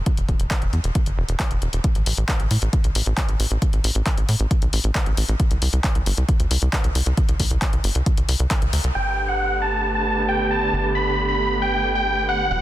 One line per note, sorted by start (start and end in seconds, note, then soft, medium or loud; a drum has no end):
0.06 kick loud
0.06 closed hi-hat medium
0.17 0.24 E1 medium
0.17 closed hi-hat soft
0.29 0.35 E1 loud
0.29 kick medium
0.29 closed hi-hat soft
0.40 0.46 E1 medium
0.40 closed hi-hat soft
0.51 kick loud
0.51 clap loud
0.51 closed hi-hat medium
0.62 0.69 E1 medium
0.62 closed hi-hat soft
0.73 0.80 E2 loud
0.73 closed hi-hat soft
0.84 0.91 E1 medium
0.84 closed hi-hat soft
0.95 kick loud
0.95 closed hi-hat medium
1.06 1.13 F#1 medium
1.06 closed hi-hat soft
1.17 1.24 E1 loud
1.29 1.35 E1 medium
1.29 closed hi-hat soft
1.40 kick loud
1.40 clap loud
1.40 closed hi-hat medium
1.51 1.58 E1 medium
1.51 closed hi-hat soft
1.62 1.69 E1 medium
1.62 closed hi-hat soft
1.73 1.80 E1 medium
1.73 closed hi-hat soft
1.84 kick loud
1.84 closed hi-hat medium
1.95 2.02 A1 medium
1.95 closed hi-hat soft
2.06 2.13 A1 loud
2.06 open hi-hat loud
2.17 2.24 A1 medium
2.17 closed hi-hat medium
2.29 kick loud
2.29 clap loud
2.29 closed hi-hat medium
2.40 2.46 A1 medium
2.40 closed hi-hat soft
2.51 2.58 A2 loud
2.51 open hi-hat loud
2.62 2.69 A1 medium
2.62 closed hi-hat soft
2.73 kick loud
2.73 closed hi-hat medium
2.84 2.91 B1 medium
2.84 closed hi-hat soft
2.95 3.02 A1 loud
2.95 open hi-hat loud
3.06 3.13 A1 medium
3.06 closed hi-hat soft
3.17 kick loud
3.17 clap loud
3.17 closed hi-hat medium
3.29 3.35 A1 medium
3.29 closed hi-hat soft
3.40 3.46 A1 loud
3.40 open hi-hat loud
3.51 3.58 A1 medium
3.51 closed hi-hat soft
3.62 kick loud
3.62 closed hi-hat medium
3.73 3.80 A1 medium
3.73 closed hi-hat soft
3.84 3.91 A1 loud
3.84 open hi-hat medium
3.95 4.02 A1 medium
3.95 closed hi-hat medium
4.06 kick loud
4.06 clap loud
4.06 closed hi-hat medium
4.17 4.24 A1 medium
4.17 closed hi-hat soft
4.29 4.35 A2 loud
4.29 open hi-hat loud
4.40 4.46 A1 medium
4.40 closed hi-hat medium
4.51 kick loud
4.51 closed hi-hat medium
4.62 4.69 B1 medium
4.62 closed hi-hat soft
4.73 4.80 A1 loud
4.73 open hi-hat medium
4.84 4.91 A1 medium
4.84 closed hi-hat medium
4.95 kick loud
4.95 clap loud
4.95 closed hi-hat medium
5.06 5.13 A1 medium
5.06 closed hi-hat soft
5.17 5.24 A1 loud
5.17 open hi-hat loud
5.29 5.35 A1 medium
5.29 closed hi-hat medium
5.40 kick loud
5.40 closed hi-hat medium
5.51 5.58 C2 medium
5.51 closed hi-hat medium
5.62 5.69 C2 loud
5.62 open hi-hat loud
5.73 5.80 C2 medium
5.73 closed hi-hat medium
5.84 kick loud
5.84 clap loud
5.84 closed hi-hat medium
5.95 6.02 C2 medium
5.95 closed hi-hat medium
6.06 6.13 G1 loud
6.06 open hi-hat medium
6.17 6.24 C2 medium
6.17 closed hi-hat medium
6.29 kick loud
6.29 closed hi-hat medium
6.40 6.46 D2 medium
6.40 closed hi-hat medium
6.51 6.58 C2 loud
6.51 open hi-hat loud
6.62 6.69 C2 medium
6.62 closed hi-hat medium
6.73 kick loud
6.73 clap loud
6.73 closed hi-hat medium
6.84 6.91 C2 medium
6.84 closed hi-hat medium
6.95 7.02 C2 loud
6.95 open hi-hat loud
7.06 7.13 C2 medium
7.06 closed hi-hat medium
7.17 kick loud
7.17 closed hi-hat medium
7.29 7.35 C2 medium
7.29 closed hi-hat medium
7.40 7.46 C2 loud
7.40 kick medium
7.40 open hi-hat medium
7.51 7.57 C2 medium
7.51 closed hi-hat medium
7.62 kick loud
7.62 clap loud
7.62 closed hi-hat medium
7.73 7.80 C2 medium
7.73 closed hi-hat medium
7.84 7.91 G1 loud
7.84 open hi-hat loud
7.95 8.02 C2 medium
7.95 closed hi-hat medium
8.06 kick loud
8.06 closed hi-hat medium
8.17 8.24 C2 medium
8.17 closed hi-hat medium
8.28 8.35 C2 loud
8.28 open hi-hat loud
8.40 8.46 C2 medium
8.40 closed hi-hat medium
8.51 kick loud
8.51 clap loud
8.51 closed hi-hat medium
8.62 8.69 C2 medium
8.62 closed hi-hat medium
8.73 8.80 D2 loud
8.73 open hi-hat medium
8.84 8.91 C2 medium
8.84 closed hi-hat medium
8.95 10.71 G1 medium
8.95 12.47 D3 medium
8.95 12.47 A3 medium
8.95 12.47 B3 medium
8.95 12.47 G4 medium
8.95 9.21 G5 medium
8.95 crash medium
9.29 9.54 F#5 medium
9.62 9.88 A5 medium
9.95 10.21 A5 medium
10.29 10.46 G5 medium
10.51 10.85 A5 medium
10.73 12.49 G1 medium
10.95 11.21 B5 medium
11.29 11.54 B5 medium
11.62 11.88 G5 medium
11.95 12.21 G5 medium
12.29 12.46 F#5 medium
12.51 12.62 E1 medium
12.51 12.62 E3 medium
12.51 12.62 F#3 medium
12.51 12.62 G3 medium
12.51 12.62 B3 medium
12.51 12.62 F#5 loud